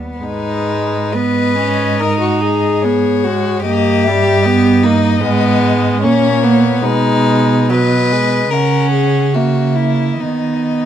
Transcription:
0.00 0.24 B3 medium
0.19 3.61 G#2 medium
0.19 1.16 G#3 medium
0.19 1.14 D#4 medium
0.19 1.14 B4 medium
1.12 1.57 B3 medium
1.12 2.01 B4 loud
1.12 2.83 D#5 medium
1.58 2.02 C#4 medium
1.99 2.86 D#4 medium
1.99 2.20 A#4 loud
2.21 2.42 F#4 medium
2.41 3.26 G#4 loud
2.82 3.27 B3 medium
2.82 3.64 C#5 medium
3.24 3.66 G#3 medium
3.24 3.62 F#4 medium
3.63 5.20 G2 medium
3.63 4.09 A#3 medium
3.63 4.85 G4 loud
3.63 4.05 D#5 medium
4.04 4.47 G3 medium
4.04 4.44 E5 medium
4.43 4.87 B3 loud
4.43 6.02 D#5 medium
4.83 5.23 A#3 medium
4.83 5.22 D#4 loud
5.20 6.05 G#2 medium
5.20 6.05 G#3 medium
5.20 6.01 B3 loud
6.02 6.84 A#2 medium
6.02 6.83 A#3 medium
6.02 6.45 C#4 loud
6.02 6.85 C#5 medium
6.43 6.84 B3 loud
6.82 8.51 B2 medium
6.82 7.71 G#3 medium
6.82 7.71 D#4 loud
6.82 7.72 B4 medium
7.69 8.14 F#3 medium
7.69 8.52 B4 loud
7.69 8.54 D#5 medium
8.12 8.52 G#3 medium
8.51 10.18 C#3 medium
8.51 9.37 C#4 medium
8.51 8.91 A#4 loud
8.51 9.36 F#5 medium
8.92 9.35 G#4 medium
9.34 10.22 A#3 medium
9.34 9.78 F#4 medium
9.34 10.19 E5 medium
9.76 10.22 E4 medium
10.19 10.85 D#3 medium
10.19 10.85 B3 medium
10.19 10.85 D#4 medium
10.19 10.85 D#5 medium

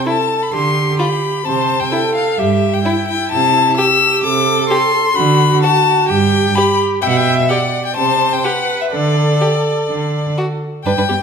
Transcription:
0.06 0.14 E4 soft
0.06 0.55 A4 soft
0.06 0.44 A5 medium
0.43 0.53 B5 medium
0.53 0.92 D3 medium
0.53 1.46 G4 soft
0.53 0.99 C6 medium
0.99 1.07 F4 soft
0.99 1.47 B5 medium
1.45 1.85 C3 medium
1.45 1.92 C5 medium
1.45 1.82 A5 medium
1.80 2.15 G5 medium
1.92 2.00 E4 soft
1.92 2.40 A4 medium
2.15 2.40 F5 medium
2.38 2.78 G2 medium
2.38 2.84 G4 medium
2.38 2.75 E5 medium
2.74 3.07 G5 medium
2.85 3.79 E4 medium
2.85 2.93 E4 soft
3.08 3.31 G5 medium
3.32 3.70 C3 medium
3.32 3.77 A5 medium
3.77 4.26 G4 medium
3.77 3.86 G4 soft
3.77 4.23 E6 medium
4.24 4.63 C3 medium
4.24 5.16 A4 medium
4.24 4.69 D6 medium
4.69 4.79 G4 medium
4.69 5.18 C6 medium
5.16 5.56 D3 medium
5.16 6.11 F#4 medium
5.16 5.62 B5 medium
5.62 5.71 F#4 soft
5.62 6.08 A5 medium
6.09 6.49 G2 medium
6.09 6.56 G4 medium
6.09 6.57 G5 medium
6.55 7.02 G4 medium
6.55 6.65 G4 medium
6.55 6.79 B5 medium
7.02 7.42 B2 medium
7.02 7.52 E5 medium
7.02 7.10 G5 medium
7.09 7.19 F#5 medium
7.17 7.38 G5 medium
7.38 7.51 E5 medium
7.49 7.58 G4 soft
7.49 7.96 D5 medium
7.49 7.85 F#5 medium
7.85 7.96 G5 medium
7.96 8.37 C3 medium
7.96 8.46 C5 medium
7.96 8.34 A5 medium
8.33 8.45 G5 medium
8.44 8.53 G4 soft
8.44 8.94 B4 soft
8.44 8.80 F#5 medium
8.81 8.86 E5 medium
8.92 9.33 D3 medium
8.92 10.61 A4 medium
8.92 10.34 D5 medium
9.41 9.49 G4 soft
9.89 10.29 D3 soft
10.38 10.46 F#4 soft
10.85 10.90 G2 medium
10.85 10.90 D4 soft
10.85 10.91 B4 soft
10.85 11.23 G5 medium
10.98 11.02 G2 soft
10.98 11.02 D4 soft
10.98 11.02 B4 soft
11.09 11.14 G2 soft
11.09 11.14 B3 soft
11.09 11.14 G4 soft

